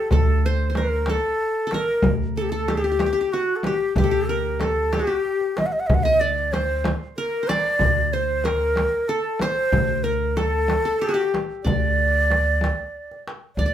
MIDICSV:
0, 0, Header, 1, 6, 480
1, 0, Start_track
1, 0, Tempo, 641026
1, 87, Time_signature, 6, 3, 24, 8
1, 10287, End_track
2, 0, Start_track
2, 0, Title_t, "Ney"
2, 0, Program_c, 0, 77
2, 0, Note_on_c, 0, 69, 95
2, 89, Note_off_c, 0, 69, 0
2, 93, Note_on_c, 0, 69, 96
2, 341, Note_on_c, 0, 72, 80
2, 353, Note_off_c, 0, 69, 0
2, 583, Note_on_c, 0, 70, 92
2, 594, Note_off_c, 0, 72, 0
2, 829, Note_on_c, 0, 69, 94
2, 841, Note_off_c, 0, 70, 0
2, 1294, Note_on_c, 0, 70, 100
2, 1305, Note_off_c, 0, 69, 0
2, 1571, Note_off_c, 0, 70, 0
2, 1768, Note_on_c, 0, 69, 77
2, 1810, Note_on_c, 0, 67, 67
2, 1821, Note_off_c, 0, 69, 0
2, 1871, Note_on_c, 0, 69, 81
2, 1882, Note_off_c, 0, 67, 0
2, 2015, Note_on_c, 0, 67, 97
2, 2026, Note_off_c, 0, 69, 0
2, 2490, Note_on_c, 0, 66, 90
2, 2502, Note_off_c, 0, 67, 0
2, 2667, Note_on_c, 0, 69, 63
2, 2678, Note_off_c, 0, 66, 0
2, 2739, Note_on_c, 0, 67, 101
2, 2750, Note_off_c, 0, 69, 0
2, 2974, Note_off_c, 0, 67, 0
2, 2984, Note_on_c, 0, 67, 102
2, 3212, Note_on_c, 0, 70, 86
2, 3224, Note_off_c, 0, 67, 0
2, 3448, Note_on_c, 0, 69, 97
2, 3459, Note_off_c, 0, 70, 0
2, 3702, Note_on_c, 0, 67, 109
2, 3713, Note_off_c, 0, 69, 0
2, 4174, Note_on_c, 0, 75, 92
2, 4185, Note_off_c, 0, 67, 0
2, 4239, Note_on_c, 0, 78, 89
2, 4250, Note_off_c, 0, 75, 0
2, 4285, Note_on_c, 0, 75, 91
2, 4296, Note_off_c, 0, 78, 0
2, 4342, Note_on_c, 0, 78, 84
2, 4353, Note_off_c, 0, 75, 0
2, 4394, Note_on_c, 0, 75, 85
2, 4405, Note_off_c, 0, 78, 0
2, 4450, Note_on_c, 0, 78, 91
2, 4461, Note_off_c, 0, 75, 0
2, 4518, Note_on_c, 0, 75, 120
2, 4529, Note_off_c, 0, 78, 0
2, 4644, Note_on_c, 0, 74, 96
2, 4655, Note_off_c, 0, 75, 0
2, 4886, Note_on_c, 0, 72, 95
2, 4897, Note_off_c, 0, 74, 0
2, 5167, Note_off_c, 0, 72, 0
2, 5369, Note_on_c, 0, 70, 90
2, 5602, Note_on_c, 0, 74, 115
2, 5613, Note_off_c, 0, 70, 0
2, 6090, Note_on_c, 0, 72, 91
2, 6101, Note_off_c, 0, 74, 0
2, 6326, Note_on_c, 0, 70, 104
2, 6337, Note_off_c, 0, 72, 0
2, 6802, Note_on_c, 0, 69, 95
2, 6813, Note_off_c, 0, 70, 0
2, 7052, Note_on_c, 0, 72, 111
2, 7063, Note_off_c, 0, 69, 0
2, 7516, Note_on_c, 0, 70, 86
2, 7527, Note_off_c, 0, 72, 0
2, 7763, Note_on_c, 0, 69, 98
2, 7774, Note_off_c, 0, 70, 0
2, 8233, Note_on_c, 0, 67, 87
2, 8244, Note_off_c, 0, 69, 0
2, 8518, Note_off_c, 0, 67, 0
2, 8714, Note_on_c, 0, 74, 112
2, 9889, Note_off_c, 0, 74, 0
2, 10156, Note_on_c, 0, 74, 103
2, 10287, Note_off_c, 0, 74, 0
2, 10287, End_track
3, 0, Start_track
3, 0, Title_t, "Qanun"
3, 0, Program_c, 1, 107
3, 0, Note_on_c, 1, 67, 51
3, 0, Note_on_c, 1, 69, 75
3, 90, Note_off_c, 1, 69, 0
3, 93, Note_on_c, 1, 69, 79
3, 343, Note_on_c, 1, 72, 87
3, 518, Note_off_c, 1, 72, 0
3, 521, Note_on_c, 1, 72, 52
3, 577, Note_on_c, 1, 70, 67
3, 622, Note_off_c, 1, 69, 0
3, 740, Note_off_c, 1, 67, 0
3, 819, Note_on_c, 1, 69, 71
3, 864, Note_off_c, 1, 70, 0
3, 1246, Note_off_c, 1, 69, 0
3, 1249, Note_on_c, 1, 69, 64
3, 1304, Note_on_c, 1, 70, 76
3, 1312, Note_off_c, 1, 72, 0
3, 1349, Note_off_c, 1, 69, 0
3, 1777, Note_on_c, 1, 69, 71
3, 1822, Note_off_c, 1, 70, 0
3, 1882, Note_off_c, 1, 69, 0
3, 1885, Note_on_c, 1, 69, 75
3, 2008, Note_on_c, 1, 67, 64
3, 2073, Note_off_c, 1, 67, 0
3, 2076, Note_on_c, 1, 67, 52
3, 2123, Note_off_c, 1, 67, 0
3, 2126, Note_on_c, 1, 67, 58
3, 2180, Note_off_c, 1, 67, 0
3, 2183, Note_on_c, 1, 67, 50
3, 2238, Note_off_c, 1, 67, 0
3, 2241, Note_on_c, 1, 67, 54
3, 2291, Note_off_c, 1, 67, 0
3, 2294, Note_on_c, 1, 67, 51
3, 2338, Note_off_c, 1, 67, 0
3, 2341, Note_on_c, 1, 67, 61
3, 2399, Note_off_c, 1, 67, 0
3, 2402, Note_on_c, 1, 67, 48
3, 2497, Note_on_c, 1, 66, 73
3, 2542, Note_off_c, 1, 67, 0
3, 2745, Note_on_c, 1, 67, 64
3, 2762, Note_off_c, 1, 69, 0
3, 2790, Note_off_c, 1, 66, 0
3, 2977, Note_off_c, 1, 67, 0
3, 2980, Note_on_c, 1, 67, 69
3, 3022, Note_on_c, 1, 69, 62
3, 3077, Note_off_c, 1, 67, 0
3, 3080, Note_on_c, 1, 67, 68
3, 3214, Note_on_c, 1, 70, 70
3, 3259, Note_off_c, 1, 69, 0
3, 3452, Note_on_c, 1, 69, 62
3, 3497, Note_off_c, 1, 70, 0
3, 3686, Note_off_c, 1, 67, 0
3, 3689, Note_on_c, 1, 67, 62
3, 3738, Note_on_c, 1, 66, 46
3, 3783, Note_off_c, 1, 67, 0
3, 3797, Note_on_c, 1, 67, 56
3, 3842, Note_off_c, 1, 66, 0
3, 4329, Note_off_c, 1, 69, 0
3, 4531, Note_on_c, 1, 75, 81
3, 4649, Note_on_c, 1, 74, 79
3, 4694, Note_off_c, 1, 75, 0
3, 4737, Note_off_c, 1, 67, 0
3, 4893, Note_on_c, 1, 72, 67
3, 5375, Note_on_c, 1, 70, 81
3, 5386, Note_off_c, 1, 74, 0
3, 5559, Note_off_c, 1, 72, 0
3, 5562, Note_on_c, 1, 72, 57
3, 5610, Note_on_c, 1, 74, 88
3, 6087, Note_off_c, 1, 72, 0
3, 6090, Note_on_c, 1, 72, 74
3, 6222, Note_off_c, 1, 70, 0
3, 6326, Note_on_c, 1, 70, 72
3, 6348, Note_off_c, 1, 74, 0
3, 6806, Note_on_c, 1, 69, 87
3, 6851, Note_off_c, 1, 70, 0
3, 6881, Note_off_c, 1, 72, 0
3, 7055, Note_on_c, 1, 72, 82
3, 7517, Note_on_c, 1, 70, 72
3, 7562, Note_off_c, 1, 69, 0
3, 7764, Note_on_c, 1, 69, 66
3, 7809, Note_off_c, 1, 70, 0
3, 7845, Note_off_c, 1, 72, 0
3, 8123, Note_off_c, 1, 69, 0
3, 8126, Note_on_c, 1, 69, 66
3, 8248, Note_on_c, 1, 67, 76
3, 8301, Note_on_c, 1, 66, 64
3, 8338, Note_off_c, 1, 67, 0
3, 8341, Note_on_c, 1, 67, 74
3, 8386, Note_off_c, 1, 66, 0
3, 8719, Note_on_c, 1, 74, 62
3, 9003, Note_off_c, 1, 69, 0
3, 9281, Note_off_c, 1, 67, 0
3, 9891, Note_off_c, 1, 74, 0
3, 10174, Note_on_c, 1, 74, 72
3, 10224, Note_off_c, 1, 74, 0
3, 10227, Note_on_c, 1, 74, 58
3, 10287, Note_off_c, 1, 74, 0
3, 10287, End_track
4, 0, Start_track
4, 0, Title_t, "Upright bass"
4, 0, Program_c, 2, 32
4, 86, Note_on_c, 2, 38, 97
4, 863, Note_off_c, 2, 38, 0
4, 1535, Note_on_c, 2, 38, 81
4, 2308, Note_off_c, 2, 38, 0
4, 2963, Note_on_c, 2, 38, 94
4, 3741, Note_off_c, 2, 38, 0
4, 4414, Note_on_c, 2, 38, 91
4, 5187, Note_off_c, 2, 38, 0
4, 5849, Note_on_c, 2, 38, 95
4, 6623, Note_off_c, 2, 38, 0
4, 7282, Note_on_c, 2, 38, 83
4, 8058, Note_off_c, 2, 38, 0
4, 8725, Note_on_c, 2, 38, 90
4, 9499, Note_off_c, 2, 38, 0
4, 10163, Note_on_c, 2, 38, 75
4, 10287, Note_off_c, 2, 38, 0
4, 10287, End_track
5, 0, Start_track
5, 0, Title_t, "Darbuka"
5, 83, Note_on_c, 9, 64, 78
5, 157, Note_off_c, 9, 64, 0
5, 326, Note_on_c, 9, 62, 26
5, 401, Note_off_c, 9, 62, 0
5, 563, Note_on_c, 9, 63, 59
5, 638, Note_off_c, 9, 63, 0
5, 793, Note_on_c, 9, 63, 77
5, 868, Note_off_c, 9, 63, 0
5, 1281, Note_on_c, 9, 63, 63
5, 1355, Note_off_c, 9, 63, 0
5, 1526, Note_on_c, 9, 64, 101
5, 1601, Note_off_c, 9, 64, 0
5, 1769, Note_on_c, 9, 62, 29
5, 1843, Note_off_c, 9, 62, 0
5, 2010, Note_on_c, 9, 63, 66
5, 2085, Note_off_c, 9, 63, 0
5, 2248, Note_on_c, 9, 63, 74
5, 2323, Note_off_c, 9, 63, 0
5, 2727, Note_on_c, 9, 63, 68
5, 2802, Note_off_c, 9, 63, 0
5, 2969, Note_on_c, 9, 64, 109
5, 3044, Note_off_c, 9, 64, 0
5, 3211, Note_on_c, 9, 62, 27
5, 3286, Note_off_c, 9, 62, 0
5, 3449, Note_on_c, 9, 63, 71
5, 3524, Note_off_c, 9, 63, 0
5, 3689, Note_on_c, 9, 63, 74
5, 3764, Note_off_c, 9, 63, 0
5, 3929, Note_on_c, 9, 62, 26
5, 4004, Note_off_c, 9, 62, 0
5, 4049, Note_on_c, 9, 62, 26
5, 4123, Note_off_c, 9, 62, 0
5, 4169, Note_on_c, 9, 63, 68
5, 4244, Note_off_c, 9, 63, 0
5, 4417, Note_on_c, 9, 64, 95
5, 4492, Note_off_c, 9, 64, 0
5, 4658, Note_on_c, 9, 62, 25
5, 4733, Note_off_c, 9, 62, 0
5, 4894, Note_on_c, 9, 63, 68
5, 4969, Note_off_c, 9, 63, 0
5, 5132, Note_on_c, 9, 63, 78
5, 5207, Note_off_c, 9, 63, 0
5, 5608, Note_on_c, 9, 63, 80
5, 5683, Note_off_c, 9, 63, 0
5, 5847, Note_on_c, 9, 64, 94
5, 5922, Note_off_c, 9, 64, 0
5, 6097, Note_on_c, 9, 62, 30
5, 6172, Note_off_c, 9, 62, 0
5, 6332, Note_on_c, 9, 63, 77
5, 6407, Note_off_c, 9, 63, 0
5, 6568, Note_on_c, 9, 63, 76
5, 6643, Note_off_c, 9, 63, 0
5, 7050, Note_on_c, 9, 63, 74
5, 7125, Note_off_c, 9, 63, 0
5, 7286, Note_on_c, 9, 64, 113
5, 7361, Note_off_c, 9, 64, 0
5, 7529, Note_on_c, 9, 62, 28
5, 7604, Note_off_c, 9, 62, 0
5, 7764, Note_on_c, 9, 63, 63
5, 7839, Note_off_c, 9, 63, 0
5, 8010, Note_on_c, 9, 63, 75
5, 8085, Note_off_c, 9, 63, 0
5, 8495, Note_on_c, 9, 63, 65
5, 8570, Note_off_c, 9, 63, 0
5, 8741, Note_on_c, 9, 64, 79
5, 8816, Note_off_c, 9, 64, 0
5, 8984, Note_on_c, 9, 62, 30
5, 9059, Note_off_c, 9, 62, 0
5, 9222, Note_on_c, 9, 63, 64
5, 9296, Note_off_c, 9, 63, 0
5, 9464, Note_on_c, 9, 63, 75
5, 9539, Note_off_c, 9, 63, 0
5, 9820, Note_on_c, 9, 62, 27
5, 9895, Note_off_c, 9, 62, 0
5, 9941, Note_on_c, 9, 63, 66
5, 10015, Note_off_c, 9, 63, 0
5, 10287, End_track
6, 0, Start_track
6, 0, Title_t, "Frame drum"
6, 79, Note_on_c, 9, 64, 86
6, 153, Note_off_c, 9, 64, 0
6, 561, Note_on_c, 9, 64, 61
6, 636, Note_off_c, 9, 64, 0
6, 802, Note_on_c, 9, 64, 61
6, 877, Note_off_c, 9, 64, 0
6, 1287, Note_on_c, 9, 64, 66
6, 1362, Note_off_c, 9, 64, 0
6, 1515, Note_on_c, 9, 64, 98
6, 1590, Note_off_c, 9, 64, 0
6, 2006, Note_on_c, 9, 64, 62
6, 2081, Note_off_c, 9, 64, 0
6, 2240, Note_on_c, 9, 64, 74
6, 2315, Note_off_c, 9, 64, 0
6, 2719, Note_on_c, 9, 64, 73
6, 2794, Note_off_c, 9, 64, 0
6, 2962, Note_on_c, 9, 64, 87
6, 3037, Note_off_c, 9, 64, 0
6, 3441, Note_on_c, 9, 64, 69
6, 3516, Note_off_c, 9, 64, 0
6, 3688, Note_on_c, 9, 64, 76
6, 3763, Note_off_c, 9, 64, 0
6, 4178, Note_on_c, 9, 64, 73
6, 4252, Note_off_c, 9, 64, 0
6, 4413, Note_on_c, 9, 64, 88
6, 4488, Note_off_c, 9, 64, 0
6, 4888, Note_on_c, 9, 64, 74
6, 4963, Note_off_c, 9, 64, 0
6, 5124, Note_on_c, 9, 64, 86
6, 5199, Note_off_c, 9, 64, 0
6, 5611, Note_on_c, 9, 64, 73
6, 5685, Note_off_c, 9, 64, 0
6, 5835, Note_on_c, 9, 64, 85
6, 5910, Note_off_c, 9, 64, 0
6, 6318, Note_on_c, 9, 64, 65
6, 6393, Note_off_c, 9, 64, 0
6, 6557, Note_on_c, 9, 64, 68
6, 6632, Note_off_c, 9, 64, 0
6, 7034, Note_on_c, 9, 64, 75
6, 7109, Note_off_c, 9, 64, 0
6, 7280, Note_on_c, 9, 64, 95
6, 7355, Note_off_c, 9, 64, 0
6, 7764, Note_on_c, 9, 64, 63
6, 7839, Note_off_c, 9, 64, 0
6, 7998, Note_on_c, 9, 64, 73
6, 8073, Note_off_c, 9, 64, 0
6, 8490, Note_on_c, 9, 64, 65
6, 8565, Note_off_c, 9, 64, 0
6, 8733, Note_on_c, 9, 64, 85
6, 8808, Note_off_c, 9, 64, 0
6, 9213, Note_on_c, 9, 64, 64
6, 9288, Note_off_c, 9, 64, 0
6, 9443, Note_on_c, 9, 64, 73
6, 9517, Note_off_c, 9, 64, 0
6, 10162, Note_on_c, 9, 64, 73
6, 10237, Note_off_c, 9, 64, 0
6, 10287, End_track
0, 0, End_of_file